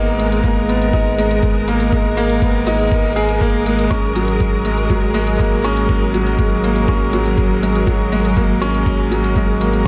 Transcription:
0.00 3.89 G#1 medium
0.00 0.19 G#3 medium
0.00 9.88 G#3 medium
0.00 0.44 A#3 loud
0.00 0.69 B3 medium
0.00 0.93 D#4 medium
0.00 9.88 A#4 medium
0.19 0.42 G#3 medium
0.19 closed hi-hat medium
0.32 closed hi-hat soft
0.44 0.68 A#3 medium
0.44 kick medium
0.44 closed hi-hat soft
0.69 0.92 B3 medium
0.69 closed hi-hat medium
0.82 closed hi-hat soft
0.93 1.17 D#4 medium
0.93 kick medium
0.93 closed hi-hat soft
1.18 1.42 G#3 medium
1.18 closed hi-hat medium
1.31 closed hi-hat soft
1.43 kick medium
1.43 closed hi-hat soft
1.68 1.92 A#3 medium
1.68 closed hi-hat medium
1.80 closed hi-hat soft
1.92 2.16 G#3 medium
1.92 kick loud
1.92 closed hi-hat soft
2.17 2.31 A#3 medium
2.17 closed hi-hat medium
2.30 closed hi-hat soft
2.42 2.66 B3 medium
2.42 kick loud
2.42 closed hi-hat soft
2.67 2.91 D#4 medium
2.67 closed hi-hat medium
2.79 closed hi-hat soft
2.92 kick loud
2.92 closed hi-hat soft
3.16 3.31 G#4 medium
3.16 closed hi-hat medium
3.29 closed hi-hat soft
3.41 3.65 A#3 medium
3.41 kick medium
3.41 closed hi-hat soft
3.66 3.90 G#3 medium
3.66 closed hi-hat medium
3.79 closed hi-hat soft
3.90 9.88 G#1 medium
3.90 9.88 F#3 medium
3.90 4.14 C#4 medium
3.90 kick medium
3.90 closed hi-hat soft
4.16 4.39 F#3 medium
4.16 closed hi-hat medium
4.28 closed hi-hat soft
4.40 kick medium
4.40 closed hi-hat soft
4.65 4.89 G#3 medium
4.65 closed hi-hat medium
4.78 closed hi-hat soft
4.90 5.13 F#3 medium
4.90 kick medium
4.90 closed hi-hat soft
5.14 5.29 G#3 loud
5.14 closed hi-hat medium
5.27 closed hi-hat soft
5.39 5.63 A#3 medium
5.39 kick medium
5.39 closed hi-hat soft
5.64 5.88 C#4 medium
5.64 closed hi-hat medium
5.77 closed hi-hat soft
5.89 kick medium
5.89 closed hi-hat soft
6.14 6.38 F#3 medium
6.14 closed hi-hat medium
6.27 closed hi-hat soft
6.39 6.63 G#3 medium
6.39 kick medium
6.39 closed hi-hat soft
6.64 6.87 A#3 medium
6.64 closed hi-hat medium
6.76 closed hi-hat soft
6.88 7.12 C#4 medium
6.88 kick loud
6.88 closed hi-hat soft
7.13 7.37 F#3 medium
7.13 closed hi-hat medium
7.25 closed hi-hat soft
7.38 kick loud
7.38 closed hi-hat soft
7.62 7.86 G#3 medium
7.62 closed hi-hat medium
7.75 closed hi-hat soft
7.87 8.11 F#3 medium
7.87 kick medium
7.87 closed hi-hat soft
8.12 8.26 G#3 medium
8.12 closed hi-hat medium
8.25 closed hi-hat soft
8.37 8.61 A#3 medium
8.37 kick medium
8.37 closed hi-hat soft
8.62 8.85 C#4 medium
8.62 closed hi-hat medium
8.74 closed hi-hat soft
8.86 kick medium
8.86 closed hi-hat soft
9.11 9.35 F#3 medium
9.11 closed hi-hat medium
9.24 closed hi-hat soft
9.36 9.60 G#3 medium
9.36 kick medium
9.36 closed hi-hat soft
9.61 9.85 A#3 medium
9.61 closed hi-hat medium
9.73 closed hi-hat soft

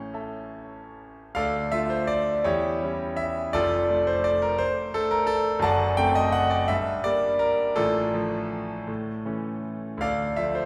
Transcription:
0.00 1.31 A1 medium
0.00 1.31 A2 medium
0.00 0.12 C#4 loud
0.14 1.31 A4 soft
0.14 1.32 E5 soft
0.14 1.32 A5 medium
1.35 1.71 D2 medium
1.35 1.70 A4 medium
1.35 1.70 D5 medium
1.35 1.71 F5 loud
1.72 2.41 A3 medium
1.72 2.41 D4 medium
1.72 2.41 F4 medium
1.72 1.90 E5 loud
1.90 2.08 C5 medium
2.07 2.44 D5 loud
2.44 2.80 E2 medium
2.44 2.81 E4 medium
2.44 3.14 G4 medium
2.44 3.18 C#5 loud
2.82 3.50 G3 soft
2.82 3.50 C#4 medium
2.82 3.51 E4 medium
3.17 3.53 E5 loud
3.53 3.88 F1 medium
3.53 3.88 F2 medium
3.53 4.04 F4 medium
3.53 4.03 A4 loud
3.53 4.07 D5 loud
3.90 4.91 A3 medium
3.90 4.91 D4 medium
4.07 4.25 C5 medium
4.24 4.42 D5 loud
4.42 4.60 A#4 loud
4.58 4.94 C5 loud
4.94 5.60 A3 medium
4.94 5.60 D4 medium
4.94 5.12 A4 loud
5.11 5.29 A#4 loud
5.27 5.62 A4 loud
5.59 5.97 F#1 medium
5.59 5.95 F#2 medium
5.59 5.98 A5 loud
5.64 5.96 D5 loud
5.64 5.96 F#5 loud
5.97 6.65 A3 medium
5.97 6.65 C4 medium
5.97 6.65 D4 medium
5.97 6.15 G5 loud
6.15 6.33 D#5 loud
6.32 6.51 F#5 loud
6.50 6.69 D5 loud
6.68 7.04 G2 medium
6.68 7.04 E5 loud
7.04 7.73 G3 medium
7.04 7.73 A#3 medium
7.04 7.74 D4 medium
7.04 7.40 D5 loud
7.39 7.76 A#4 loud
7.75 8.12 A1 medium
7.75 8.12 A2 medium
7.75 8.13 D4 medium
7.75 9.60 F4 medium
7.75 9.64 A4 loud
8.14 8.84 F3 medium
8.14 8.84 A3 medium
8.14 8.85 D4 medium
8.88 9.25 A2 medium
9.25 9.97 E3 soft
9.25 9.97 A3 soft
9.25 9.97 C#4 medium
9.97 10.35 D2 medium
9.97 10.38 F5 loud
10.02 10.36 A4 medium
10.02 10.36 D5 medium
10.36 10.65 F3 medium
10.36 10.65 A3 soft
10.36 10.65 D4 medium
10.36 10.56 E5 loud
10.55 10.65 C5 medium

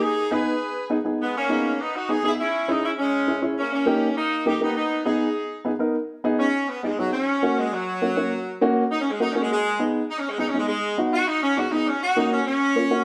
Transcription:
0.02 0.32 D#4 medium
0.02 0.31 G#4 loud
0.31 0.52 B3 medium
0.31 0.52 D#4 medium
0.31 0.52 G#4 medium
0.31 0.91 G#4 medium
0.31 0.91 B4 medium
0.90 0.96 B3 medium
0.90 0.96 D#4 medium
0.90 0.96 G#4 medium
1.05 1.21 B3 medium
1.05 1.21 D#4 medium
1.05 1.21 G#4 medium
1.21 1.35 G#3 medium
1.21 1.35 B3 loud
1.36 1.77 A#3 medium
1.36 1.77 C#4 loud
1.49 1.70 B3 medium
1.49 1.71 D#4 medium
1.49 1.71 G#4 medium
1.80 1.95 B3 medium
1.80 1.94 D#4 loud
1.95 2.09 D#4 medium
1.95 2.10 F#4 medium
2.09 2.14 B3 medium
2.09 2.15 D#4 medium
2.09 2.24 D#4 medium
2.09 2.24 G#4 loud
2.09 2.15 G#4 medium
2.23 2.39 B3 medium
2.23 2.39 D#4 medium
2.23 2.32 E4 medium
2.23 2.39 G#4 medium
2.23 2.32 G#4 loud
2.40 2.67 C#4 medium
2.40 2.67 E4 loud
2.68 2.84 G#3 medium
2.68 2.89 C#4 medium
2.68 2.84 D#4 medium
2.68 2.89 E4 medium
2.68 2.89 G#4 medium
2.84 2.90 C#4 medium
2.84 2.91 E4 loud
2.98 3.40 G#3 medium
2.98 3.40 C#4 loud
3.27 3.33 C#4 medium
3.27 3.33 E4 medium
3.27 3.33 G#4 medium
3.42 3.57 C#4 medium
3.42 3.57 E4 medium
3.42 3.57 G#4 medium
3.58 3.72 A#3 medium
3.58 3.71 C#4 loud
3.73 4.14 A#3 medium
3.73 4.14 C#4 medium
3.86 4.07 A#3 medium
3.86 4.08 D#4 medium
3.86 4.08 G4 medium
4.17 4.45 A#3 medium
4.17 4.45 D#4 loud
4.46 4.51 A#3 medium
4.46 4.51 D#4 medium
4.46 4.61 D#4 medium
4.46 4.52 G4 medium
4.46 4.60 G4 medium
4.61 4.76 A#3 medium
4.61 4.76 B3 medium
4.61 4.76 D#4 soft
4.61 4.75 D#4 medium
4.61 4.76 G4 medium
4.76 5.04 B3 medium
4.76 5.03 D#4 loud
5.06 5.26 B3 medium
5.06 5.26 D#4 medium
5.06 5.61 D#4 medium
5.06 5.61 G#4 medium
5.06 5.27 G#4 medium
5.65 5.70 B3 medium
5.65 5.70 D#4 medium
5.65 5.70 G#4 medium
5.79 5.94 B3 medium
5.79 5.95 D#4 medium
5.79 5.95 A#4 medium
6.24 6.45 B3 medium
6.24 6.45 D#4 medium
6.24 6.45 G#4 loud
6.39 6.68 C#4 loud
6.69 6.83 B3 medium
6.83 6.98 G#3 medium
6.83 6.88 B3 medium
6.83 6.89 D#4 medium
6.83 6.89 G#4 medium
6.98 7.13 F#3 medium
6.98 7.13 B3 medium
6.98 7.13 D#4 medium
6.98 7.14 G#4 medium
7.13 7.56 C#4 loud
7.42 7.63 A#3 medium
7.42 7.64 C#4 medium
7.42 7.64 F#4 medium
7.58 7.72 G#3 medium
7.72 8.59 F#3 loud
8.02 8.07 A#3 medium
8.02 8.07 C#4 medium
8.02 8.07 F#4 medium
8.17 8.32 A#3 medium
8.17 8.32 C#4 medium
8.17 8.33 F#4 medium
8.61 8.82 A#3 medium
8.61 8.82 C#4 medium
8.61 8.83 F#4 loud
8.91 9.01 D#4 loud
9.01 9.10 C#4 medium
9.11 9.20 G#3 medium
9.20 9.26 A#3 medium
9.20 9.26 C#4 medium
9.20 9.30 D#4 medium
9.20 9.26 F#4 medium
9.31 9.50 A#3 medium
9.31 9.41 C#4 medium
9.36 9.50 C#4 medium
9.36 9.51 F#4 medium
9.41 9.50 G#3 medium
9.52 9.80 G#3 loud
9.79 10.00 B3 medium
9.79 10.01 D#4 medium
9.79 10.01 G#4 medium
10.09 10.19 D#4 medium
10.18 10.28 C#4 medium
10.29 10.39 G#3 medium
10.38 10.44 B3 medium
10.38 10.48 D#4 medium
10.38 10.44 D#4 medium
10.38 10.44 G#4 medium
10.48 10.58 C#4 medium
10.54 10.69 B3 medium
10.54 10.70 D#4 medium
10.54 10.70 G#4 medium
10.58 10.66 G#3 medium
10.68 10.97 G#3 loud
10.98 11.19 B3 medium
10.98 11.19 D#4 medium
10.98 11.19 F#4 medium
11.13 11.27 F#4 loud
11.27 11.42 D#4 loud
11.42 11.57 C#4 loud
11.57 11.62 B3 medium
11.57 11.63 D#4 medium
11.57 11.72 F#4 medium
11.57 11.63 G#4 medium
11.71 11.87 B3 medium
11.71 11.86 D#4 medium
11.71 11.87 D#4 medium
11.71 11.87 G#4 medium
11.87 12.02 C#4 medium
12.02 12.17 F#4 loud
12.16 12.37 A#3 medium
12.16 12.38 C#4 medium
12.16 12.31 D#4 medium
12.16 12.38 F#4 medium
12.32 12.45 C#4 medium
12.46 13.04 C#4 loud
12.76 12.81 A#3 medium
12.76 12.81 C#4 medium
12.76 12.81 F4 medium
12.90 13.04 A#3 medium
12.90 13.04 C#4 medium
12.90 13.04 F#4 medium

